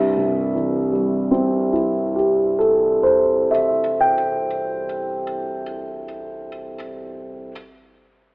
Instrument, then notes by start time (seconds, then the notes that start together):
grand piano
Already playing: C2 G2 E5
0.17 C3
0.55 E3
0.92 G3
1.31 C4
1.73 E4
2.16 G4
2.59 A4
3.03 C5
3.51 E5
4.01 G5